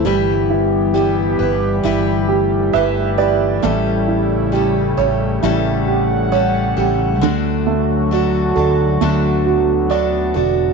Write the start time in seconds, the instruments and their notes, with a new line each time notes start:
Already playing: steel-string acoustic guitar E3, analog synth pad E3
0.04 fretless electric bass G1, analog synth pad G3 B3 G4, steel-string acoustic guitar G3 E4 G4 B4, grand piano G3
0.50 grand piano E4
0.94 steel-string acoustic guitar G3 E4 G4 B4, grand piano G4
1.39 fretless electric bass G1, steel-string acoustic guitar E4 G4 B4, grand piano B4
1.83 fretless electric bass G1, steel-string acoustic guitar G3 E4 G4 B4, analog synth pad A3, grand piano E4
2.28 grand piano G4
2.73 fretless electric bass G1, steel-string acoustic guitar G3 E4 G4 B4, grand piano B4 E5
3.18 steel-string acoustic guitar E4 G4 B4, grand piano G4 D5
3.62 fretless electric bass A1, steel-string acoustic guitar A2 E3 G3 C#4 G4 A4, analog synth pad C#3 E4, grand piano A3
4.08 grand piano E4
4.52 steel-string acoustic guitar G3 C#4 G4 A4, grand piano G4
4.97 fretless electric bass A1, steel-string acoustic guitar G3 C#4 G4 A4, grand piano C#5
5.41 fretless electric bass A1, steel-string acoustic guitar A2 E3 G3 C#4 G4 A4, grand piano E4, analog synth pad F#5
5.88 grand piano G4
6.32 steel-string acoustic guitar G3 C#4 G4 A4, grand piano C#5
6.77 fretless electric bass A1, steel-string acoustic guitar G3 C#4 G4 A4, grand piano G4
7.21 fretless electric bass D2, steel-string acoustic guitar D3 A3 D4 F#4 A4, analog synth pad D3 F#3 F#4, grand piano D3
7.67 grand piano A3
8.11 steel-string acoustic guitar A3 D4 F#4 A4, grand piano F#4
8.56 fretless electric bass D2, steel-string acoustic guitar D4 F#4 A4, grand piano A4
9.01 fretless electric bass D2, steel-string acoustic guitar D3 A3 D4 F#4 A4, grand piano A3, analog synth pad B3
9.46 grand piano F#4
9.90 steel-string acoustic guitar A3 D4 F#4 A4, grand piano D5
10.34 fretless electric bass E1, steel-string acoustic guitar D4 F#4 A4, grand piano F#4